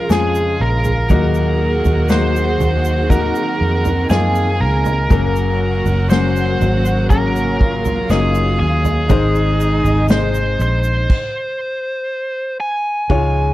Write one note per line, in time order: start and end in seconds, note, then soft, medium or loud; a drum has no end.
0.00 1.06 C#3 medium
0.00 0.09 F3 medium
0.00 1.06 F3 medium
0.00 0.10 G#3 medium
0.00 1.06 G#3 medium
0.00 0.10 C#4 medium
0.00 1.11 D#4 medium
0.00 1.06 F4 medium
0.00 1.12 F4 medium
0.00 5.06 G#4 medium
0.00 0.13 A#4 loud
0.00 1.06 F5 medium
0.09 0.56 F2 medium
0.09 1.04 F3 medium
0.09 1.05 G#3 medium
0.09 1.05 C#4 medium
0.09 1.05 G#4 medium
0.09 0.62 G#4 medium
0.09 snare medium
0.09 shaker medium
0.35 shaker medium
0.60 1.07 A#1 medium
0.60 2.10 A#4 medium
0.84 floor tom medium
0.84 shaker medium
1.09 1.81 D#2 loud
1.09 2.56 A#2 medium
1.09 5.06 D#3 medium
1.09 2.05 F#3 medium
1.09 3.08 A#3 medium
1.09 2.05 A#3 medium
1.09 2.05 D#4 medium
1.09 4.06 F#4 medium
1.09 2.05 F#4 loud
1.09 4.06 F#5 medium
1.09 kick loud
1.09 floor tom medium
1.09 shaker medium
1.34 shaker soft
1.85 2.56 D#2 medium
1.85 floor tom medium
1.85 shaker soft
2.09 3.05 F#3 medium
2.09 3.05 A#3 medium
2.09 3.05 D#4 medium
2.09 3.05 F#4 medium
2.09 3.10 C5 medium
2.09 snare loud
2.09 shaker medium
2.36 shaker medium
2.60 3.31 D#2 medium
2.60 floor tom medium
2.60 shaker soft
2.85 shaker medium
3.09 4.05 D#3 medium
3.09 4.05 A#3 medium
3.09 5.09 C4 medium
3.09 4.05 D#4 medium
3.09 4.05 F#4 medium
3.09 4.06 A#4 loud
3.09 kick medium
3.09 shaker medium
3.35 shaker soft
3.61 4.07 F2 medium
3.85 floor tom medium
3.85 shaker soft
4.09 4.62 F#2 medium
4.09 5.05 F3 medium
4.09 5.05 A#3 medium
4.09 5.05 D#4 medium
4.09 5.05 F4 medium
4.09 4.62 G#4 medium
4.09 5.08 G#4 medium
4.09 5.08 G#5 medium
4.09 snare loud
4.09 shaker medium
4.35 shaker soft
4.60 5.07 C#2 medium
4.60 6.09 A#4 medium
4.85 floor tom medium
4.85 shaker soft
5.09 5.81 F#1 loud
5.09 6.56 C#3 medium
5.09 9.07 C#3 medium
5.09 6.05 F#3 loud
5.09 9.07 F#3 medium
5.09 6.05 A#3 medium
5.09 9.07 A#3 medium
5.09 6.05 C#4 medium
5.09 7.56 F#4 medium
5.09 6.05 A#4 loud
5.09 7.56 F#5 medium
5.09 kick loud
5.09 floor tom medium
5.09 shaker medium
5.36 shaker soft
5.85 6.56 F#1 medium
5.85 floor tom medium
5.85 shaker soft
6.10 7.05 F#3 medium
6.10 7.05 A#3 medium
6.10 7.06 C#4 medium
6.10 7.06 F#4 medium
6.10 7.06 C5 medium
6.10 snare loud
6.10 shaker medium
6.36 shaker soft
6.61 8.06 G#1 medium
6.61 floor tom medium
6.61 shaker soft
6.85 shaker medium
7.09 8.04 F#3 medium
7.09 8.05 A#3 medium
7.09 8.05 C#4 medium
7.09 8.05 G#4 medium
7.09 8.13 A#4 medium
7.09 kick medium
7.09 shaker medium
7.36 shaker soft
7.61 9.07 F4 medium
7.61 9.08 F5 medium
7.61 kick medium
7.85 floor tom medium
7.85 shaker soft
8.10 8.62 F#1 medium
8.10 9.05 F#3 medium
8.10 9.05 A#3 medium
8.10 9.05 C#4 medium
8.10 9.05 D#4 medium
8.10 8.58 G#4 medium
8.10 snare loud
8.10 shaker medium
8.35 shaker soft
8.60 9.07 D#2 medium
8.60 10.06 G#4 medium
8.85 floor tom medium
8.85 shaker soft
9.09 9.81 G#1 loud
9.09 10.56 G#2 medium
9.09 11.08 C3 medium
9.09 11.08 D#3 medium
9.09 10.56 D#3 medium
9.09 11.07 G#3 medium
9.09 10.05 G#3 medium
9.09 10.05 C4 medium
9.09 11.08 D#4 loud
9.09 11.06 D#4 medium
9.09 10.05 D#4 medium
9.09 10.05 C5 loud
9.09 11.06 D#5 medium
9.09 kick loud
9.09 floor tom loud
9.09 shaker medium
9.35 shaker soft
9.60 shaker medium
9.84 10.56 G#1 medium
9.84 floor tom medium
9.84 shaker soft
10.09 11.05 G#3 medium
10.09 11.05 C4 medium
10.09 11.05 D#4 medium
10.09 10.61 C5 medium
10.09 11.06 C5 medium
10.09 snare loud
10.09 shaker medium
10.35 shaker medium
10.59 11.06 A#1 loud
10.59 12.57 C5 medium
10.59 shaker soft
10.84 shaker medium
11.10 kick loud
11.10 crash medium
12.60 13.54 G#5 medium
13.10 13.54 C#2 medium
13.10 13.54 G#2 medium
13.10 13.54 C#3 medium
13.10 13.54 F3 medium
13.10 13.54 G#3 medium
13.10 13.54 F4 medium
13.10 13.54 C#5 loud
13.10 13.54 F5 medium
13.10 kick loud
13.10 floor tom medium